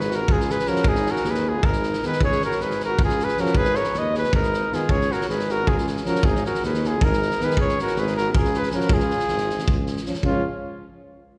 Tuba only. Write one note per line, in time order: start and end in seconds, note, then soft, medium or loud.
0.00 0.29 G#1 medium
0.28 0.59 C#2 medium
0.85 1.07 G#1 medium
1.24 1.65 D#2 medium
1.64 1.95 G#1 medium
2.20 2.41 C#2 medium
2.60 3.01 G#1 medium
3.00 3.30 C#2 medium
3.55 3.77 G#1 medium
3.94 4.33 D#2 medium
4.32 4.63 G#1 medium
4.88 5.10 C#2 medium
5.28 5.70 G#1 medium
5.68 5.99 C#2 medium
6.23 6.45 G#1 loud
6.64 7.04 D#2 medium
7.03 7.33 G#1 medium
7.58 7.79 C#2 medium
7.96 8.37 G#1 medium
8.35 8.66 C#2 medium
8.89 9.11 C#2 medium
9.29 9.70 G#1 medium
9.69 9.99 C#2 medium
10.24 10.43 C#2 medium